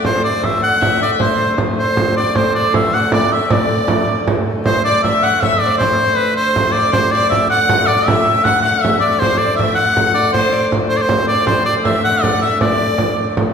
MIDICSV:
0, 0, Header, 1, 5, 480
1, 0, Start_track
1, 0, Tempo, 382653
1, 56, Time_signature, 6, 3, 24, 8
1, 8697, Tempo, 378072
1, 17080, End_track
2, 0, Start_track
2, 0, Title_t, "Fiddle"
2, 0, Program_c, 0, 110
2, 48, Note_on_c, 0, 72, 73
2, 762, Note_off_c, 0, 72, 0
2, 770, Note_on_c, 0, 78, 81
2, 1013, Note_on_c, 0, 76, 82
2, 1032, Note_off_c, 0, 78, 0
2, 1494, Note_on_c, 0, 72, 79
2, 1513, Note_off_c, 0, 76, 0
2, 1981, Note_off_c, 0, 72, 0
2, 2219, Note_on_c, 0, 72, 69
2, 2670, Note_off_c, 0, 72, 0
2, 2715, Note_on_c, 0, 74, 69
2, 2950, Note_on_c, 0, 72, 76
2, 2969, Note_off_c, 0, 74, 0
2, 3677, Note_on_c, 0, 78, 79
2, 3695, Note_off_c, 0, 72, 0
2, 3910, Note_off_c, 0, 78, 0
2, 3917, Note_on_c, 0, 74, 72
2, 4137, Note_off_c, 0, 74, 0
2, 4162, Note_on_c, 0, 76, 73
2, 4380, Note_off_c, 0, 76, 0
2, 4396, Note_on_c, 0, 74, 73
2, 5302, Note_off_c, 0, 74, 0
2, 5840, Note_on_c, 0, 72, 83
2, 6058, Note_off_c, 0, 72, 0
2, 6079, Note_on_c, 0, 74, 86
2, 6297, Note_off_c, 0, 74, 0
2, 6318, Note_on_c, 0, 76, 82
2, 6565, Note_on_c, 0, 78, 92
2, 6583, Note_off_c, 0, 76, 0
2, 6796, Note_off_c, 0, 78, 0
2, 6803, Note_on_c, 0, 76, 89
2, 7018, Note_off_c, 0, 76, 0
2, 7039, Note_on_c, 0, 74, 79
2, 7107, Note_on_c, 0, 72, 66
2, 7125, Note_off_c, 0, 74, 0
2, 7182, Note_on_c, 0, 74, 81
2, 7201, Note_off_c, 0, 72, 0
2, 7316, Note_on_c, 0, 72, 88
2, 7335, Note_off_c, 0, 74, 0
2, 8008, Note_off_c, 0, 72, 0
2, 8013, Note_on_c, 0, 72, 80
2, 8221, Note_off_c, 0, 72, 0
2, 8256, Note_on_c, 0, 72, 79
2, 8498, Note_on_c, 0, 74, 85
2, 8516, Note_off_c, 0, 72, 0
2, 8721, Note_on_c, 0, 72, 92
2, 8740, Note_off_c, 0, 74, 0
2, 8951, Note_off_c, 0, 72, 0
2, 8961, Note_on_c, 0, 74, 92
2, 9400, Note_off_c, 0, 74, 0
2, 9434, Note_on_c, 0, 78, 91
2, 9904, Note_on_c, 0, 74, 80
2, 9923, Note_off_c, 0, 78, 0
2, 10130, Note_on_c, 0, 76, 88
2, 10149, Note_off_c, 0, 74, 0
2, 10620, Note_off_c, 0, 76, 0
2, 10628, Note_on_c, 0, 78, 86
2, 10852, Note_off_c, 0, 78, 0
2, 10865, Note_on_c, 0, 78, 81
2, 11093, Note_on_c, 0, 76, 75
2, 11112, Note_off_c, 0, 78, 0
2, 11347, Note_on_c, 0, 74, 78
2, 11366, Note_off_c, 0, 76, 0
2, 11585, Note_off_c, 0, 74, 0
2, 11593, Note_on_c, 0, 72, 80
2, 11816, Note_off_c, 0, 72, 0
2, 11825, Note_on_c, 0, 74, 76
2, 12073, Note_on_c, 0, 76, 77
2, 12092, Note_off_c, 0, 74, 0
2, 12301, Note_on_c, 0, 78, 90
2, 12320, Note_off_c, 0, 76, 0
2, 13027, Note_off_c, 0, 78, 0
2, 13038, Note_on_c, 0, 72, 80
2, 13257, Note_on_c, 0, 74, 72
2, 13276, Note_off_c, 0, 72, 0
2, 13505, Note_off_c, 0, 74, 0
2, 13734, Note_on_c, 0, 72, 76
2, 13897, Note_off_c, 0, 72, 0
2, 13917, Note_on_c, 0, 72, 69
2, 14207, Note_on_c, 0, 74, 77
2, 14226, Note_off_c, 0, 72, 0
2, 14463, Note_on_c, 0, 72, 79
2, 14482, Note_off_c, 0, 74, 0
2, 14935, Note_on_c, 0, 76, 77
2, 14954, Note_off_c, 0, 72, 0
2, 15190, Note_on_c, 0, 78, 90
2, 15209, Note_off_c, 0, 76, 0
2, 15683, Note_on_c, 0, 76, 78
2, 15702, Note_off_c, 0, 78, 0
2, 15902, Note_off_c, 0, 76, 0
2, 15910, Note_on_c, 0, 74, 77
2, 16813, Note_off_c, 0, 74, 0
2, 17080, End_track
3, 0, Start_track
3, 0, Title_t, "Shawm"
3, 0, Program_c, 1, 111
3, 68, Note_on_c, 1, 72, 83
3, 287, Note_off_c, 1, 72, 0
3, 309, Note_on_c, 1, 74, 84
3, 558, Note_on_c, 1, 76, 80
3, 577, Note_off_c, 1, 74, 0
3, 790, Note_off_c, 1, 76, 0
3, 797, Note_on_c, 1, 78, 97
3, 1238, Note_off_c, 1, 78, 0
3, 1288, Note_on_c, 1, 74, 79
3, 1391, Note_off_c, 1, 74, 0
3, 1521, Note_on_c, 1, 72, 77
3, 1961, Note_off_c, 1, 72, 0
3, 2251, Note_on_c, 1, 72, 84
3, 2687, Note_off_c, 1, 72, 0
3, 2722, Note_on_c, 1, 74, 86
3, 2959, Note_on_c, 1, 72, 79
3, 2978, Note_off_c, 1, 74, 0
3, 3194, Note_off_c, 1, 72, 0
3, 3200, Note_on_c, 1, 74, 79
3, 3418, Note_off_c, 1, 74, 0
3, 3450, Note_on_c, 1, 76, 84
3, 3687, Note_on_c, 1, 78, 92
3, 3706, Note_off_c, 1, 76, 0
3, 3919, Note_off_c, 1, 78, 0
3, 3929, Note_on_c, 1, 74, 76
3, 4169, Note_on_c, 1, 76, 76
3, 4188, Note_off_c, 1, 74, 0
3, 4414, Note_on_c, 1, 74, 71
3, 4433, Note_off_c, 1, 76, 0
3, 5362, Note_off_c, 1, 74, 0
3, 5842, Note_on_c, 1, 72, 88
3, 6059, Note_off_c, 1, 72, 0
3, 6077, Note_on_c, 1, 74, 95
3, 6296, Note_off_c, 1, 74, 0
3, 6311, Note_on_c, 1, 76, 91
3, 6562, Note_on_c, 1, 78, 99
3, 6581, Note_off_c, 1, 76, 0
3, 6782, Note_on_c, 1, 76, 90
3, 6801, Note_off_c, 1, 78, 0
3, 7024, Note_on_c, 1, 74, 96
3, 7043, Note_off_c, 1, 76, 0
3, 7245, Note_off_c, 1, 74, 0
3, 7252, Note_on_c, 1, 72, 93
3, 7735, Note_on_c, 1, 71, 89
3, 7753, Note_off_c, 1, 72, 0
3, 7974, Note_off_c, 1, 71, 0
3, 7982, Note_on_c, 1, 72, 96
3, 8434, Note_on_c, 1, 74, 93
3, 8453, Note_off_c, 1, 72, 0
3, 8674, Note_off_c, 1, 74, 0
3, 8681, Note_on_c, 1, 72, 95
3, 8930, Note_on_c, 1, 74, 94
3, 8949, Note_off_c, 1, 72, 0
3, 9153, Note_off_c, 1, 74, 0
3, 9160, Note_on_c, 1, 76, 99
3, 9395, Note_off_c, 1, 76, 0
3, 9417, Note_on_c, 1, 78, 105
3, 9885, Note_on_c, 1, 74, 99
3, 9904, Note_off_c, 1, 78, 0
3, 10129, Note_on_c, 1, 76, 105
3, 10148, Note_off_c, 1, 74, 0
3, 10612, Note_on_c, 1, 78, 101
3, 10631, Note_off_c, 1, 76, 0
3, 10837, Note_off_c, 1, 78, 0
3, 10845, Note_on_c, 1, 78, 98
3, 11086, Note_on_c, 1, 76, 90
3, 11105, Note_off_c, 1, 78, 0
3, 11311, Note_off_c, 1, 76, 0
3, 11318, Note_on_c, 1, 74, 91
3, 11567, Note_on_c, 1, 72, 88
3, 11586, Note_off_c, 1, 74, 0
3, 11805, Note_on_c, 1, 74, 93
3, 11824, Note_off_c, 1, 72, 0
3, 12027, Note_off_c, 1, 74, 0
3, 12035, Note_on_c, 1, 76, 89
3, 12267, Note_off_c, 1, 76, 0
3, 12274, Note_on_c, 1, 78, 95
3, 12739, Note_off_c, 1, 78, 0
3, 12770, Note_on_c, 1, 74, 88
3, 13004, Note_off_c, 1, 74, 0
3, 13010, Note_on_c, 1, 72, 83
3, 13467, Note_off_c, 1, 72, 0
3, 13725, Note_on_c, 1, 72, 86
3, 13823, Note_on_c, 1, 74, 74
3, 13842, Note_off_c, 1, 72, 0
3, 13881, Note_on_c, 1, 72, 93
3, 13900, Note_off_c, 1, 74, 0
3, 14203, Note_off_c, 1, 72, 0
3, 14211, Note_on_c, 1, 74, 93
3, 14443, Note_off_c, 1, 74, 0
3, 14455, Note_on_c, 1, 72, 86
3, 14685, Note_off_c, 1, 72, 0
3, 14697, Note_on_c, 1, 74, 92
3, 14808, Note_off_c, 1, 74, 0
3, 14939, Note_on_c, 1, 76, 97
3, 15167, Note_off_c, 1, 76, 0
3, 15185, Note_on_c, 1, 78, 100
3, 15414, Note_on_c, 1, 74, 83
3, 15433, Note_off_c, 1, 78, 0
3, 15652, Note_off_c, 1, 74, 0
3, 15660, Note_on_c, 1, 76, 88
3, 15886, Note_off_c, 1, 76, 0
3, 15905, Note_on_c, 1, 74, 87
3, 16810, Note_off_c, 1, 74, 0
3, 17080, End_track
4, 0, Start_track
4, 0, Title_t, "Hurdy-gurdy"
4, 0, Program_c, 2, 110
4, 53, Note_on_c, 2, 50, 71
4, 63, Note_on_c, 2, 57, 69
4, 5840, Note_off_c, 2, 50, 0
4, 5840, Note_on_c, 2, 50, 74
4, 5844, Note_off_c, 2, 57, 0
4, 5844, Note_on_c, 2, 57, 75
4, 11593, Note_off_c, 2, 50, 0
4, 11593, Note_on_c, 2, 50, 76
4, 11598, Note_off_c, 2, 57, 0
4, 11598, Note_on_c, 2, 57, 71
4, 17080, Note_off_c, 2, 50, 0
4, 17080, Note_off_c, 2, 57, 0
4, 17080, End_track
5, 0, Start_track
5, 0, Title_t, "Frame drum"
5, 58, Note_on_c, 9, 64, 84
5, 183, Note_off_c, 9, 64, 0
5, 545, Note_on_c, 9, 64, 73
5, 670, Note_off_c, 9, 64, 0
5, 787, Note_on_c, 9, 64, 24
5, 913, Note_off_c, 9, 64, 0
5, 1030, Note_on_c, 9, 64, 82
5, 1156, Note_off_c, 9, 64, 0
5, 1268, Note_on_c, 9, 64, 24
5, 1393, Note_off_c, 9, 64, 0
5, 1504, Note_on_c, 9, 64, 79
5, 1629, Note_off_c, 9, 64, 0
5, 1983, Note_on_c, 9, 64, 82
5, 2109, Note_off_c, 9, 64, 0
5, 2230, Note_on_c, 9, 64, 24
5, 2355, Note_off_c, 9, 64, 0
5, 2473, Note_on_c, 9, 64, 85
5, 2598, Note_off_c, 9, 64, 0
5, 2713, Note_on_c, 9, 64, 26
5, 2839, Note_off_c, 9, 64, 0
5, 2955, Note_on_c, 9, 64, 86
5, 3080, Note_off_c, 9, 64, 0
5, 3437, Note_on_c, 9, 64, 92
5, 3563, Note_off_c, 9, 64, 0
5, 3683, Note_on_c, 9, 64, 27
5, 3809, Note_off_c, 9, 64, 0
5, 3913, Note_on_c, 9, 64, 94
5, 4038, Note_off_c, 9, 64, 0
5, 4161, Note_on_c, 9, 64, 30
5, 4286, Note_off_c, 9, 64, 0
5, 4396, Note_on_c, 9, 64, 104
5, 4521, Note_off_c, 9, 64, 0
5, 4867, Note_on_c, 9, 64, 92
5, 4993, Note_off_c, 9, 64, 0
5, 5112, Note_on_c, 9, 64, 28
5, 5238, Note_off_c, 9, 64, 0
5, 5362, Note_on_c, 9, 64, 92
5, 5487, Note_off_c, 9, 64, 0
5, 5840, Note_on_c, 9, 64, 86
5, 5965, Note_off_c, 9, 64, 0
5, 6324, Note_on_c, 9, 64, 76
5, 6450, Note_off_c, 9, 64, 0
5, 6566, Note_on_c, 9, 64, 24
5, 6692, Note_off_c, 9, 64, 0
5, 6805, Note_on_c, 9, 64, 80
5, 6930, Note_off_c, 9, 64, 0
5, 7048, Note_on_c, 9, 64, 25
5, 7174, Note_off_c, 9, 64, 0
5, 7284, Note_on_c, 9, 64, 86
5, 7409, Note_off_c, 9, 64, 0
5, 7999, Note_on_c, 9, 64, 25
5, 8124, Note_off_c, 9, 64, 0
5, 8229, Note_on_c, 9, 64, 80
5, 8354, Note_off_c, 9, 64, 0
5, 8473, Note_on_c, 9, 64, 27
5, 8599, Note_off_c, 9, 64, 0
5, 8697, Note_on_c, 9, 64, 91
5, 8824, Note_off_c, 9, 64, 0
5, 9187, Note_on_c, 9, 64, 82
5, 9314, Note_off_c, 9, 64, 0
5, 9437, Note_on_c, 9, 64, 27
5, 9564, Note_off_c, 9, 64, 0
5, 9663, Note_on_c, 9, 64, 92
5, 9790, Note_off_c, 9, 64, 0
5, 9907, Note_on_c, 9, 64, 30
5, 10034, Note_off_c, 9, 64, 0
5, 10154, Note_on_c, 9, 64, 97
5, 10281, Note_off_c, 9, 64, 0
5, 10390, Note_on_c, 9, 64, 27
5, 10517, Note_off_c, 9, 64, 0
5, 10621, Note_on_c, 9, 64, 83
5, 10748, Note_off_c, 9, 64, 0
5, 10884, Note_on_c, 9, 64, 26
5, 11011, Note_off_c, 9, 64, 0
5, 11125, Note_on_c, 9, 64, 81
5, 11252, Note_off_c, 9, 64, 0
5, 11362, Note_on_c, 9, 64, 27
5, 11489, Note_off_c, 9, 64, 0
5, 11599, Note_on_c, 9, 64, 84
5, 11726, Note_off_c, 9, 64, 0
5, 12074, Note_on_c, 9, 64, 77
5, 12201, Note_off_c, 9, 64, 0
5, 12316, Note_on_c, 9, 64, 25
5, 12443, Note_off_c, 9, 64, 0
5, 12549, Note_on_c, 9, 64, 79
5, 12676, Note_off_c, 9, 64, 0
5, 12787, Note_on_c, 9, 64, 25
5, 12914, Note_off_c, 9, 64, 0
5, 13026, Note_on_c, 9, 64, 81
5, 13153, Note_off_c, 9, 64, 0
5, 13507, Note_on_c, 9, 64, 77
5, 13633, Note_off_c, 9, 64, 0
5, 13748, Note_on_c, 9, 64, 25
5, 13875, Note_off_c, 9, 64, 0
5, 13972, Note_on_c, 9, 64, 86
5, 14099, Note_off_c, 9, 64, 0
5, 14223, Note_on_c, 9, 64, 27
5, 14350, Note_off_c, 9, 64, 0
5, 14454, Note_on_c, 9, 64, 88
5, 14581, Note_off_c, 9, 64, 0
5, 14942, Note_on_c, 9, 64, 84
5, 15069, Note_off_c, 9, 64, 0
5, 15189, Note_on_c, 9, 64, 27
5, 15316, Note_off_c, 9, 64, 0
5, 15429, Note_on_c, 9, 64, 82
5, 15556, Note_off_c, 9, 64, 0
5, 15674, Note_on_c, 9, 64, 27
5, 15801, Note_off_c, 9, 64, 0
5, 15903, Note_on_c, 9, 64, 89
5, 16030, Note_off_c, 9, 64, 0
5, 16150, Note_on_c, 9, 64, 26
5, 16277, Note_off_c, 9, 64, 0
5, 16378, Note_on_c, 9, 64, 83
5, 16505, Note_off_c, 9, 64, 0
5, 16640, Note_on_c, 9, 64, 27
5, 16767, Note_off_c, 9, 64, 0
5, 16871, Note_on_c, 9, 64, 87
5, 16998, Note_off_c, 9, 64, 0
5, 17080, End_track
0, 0, End_of_file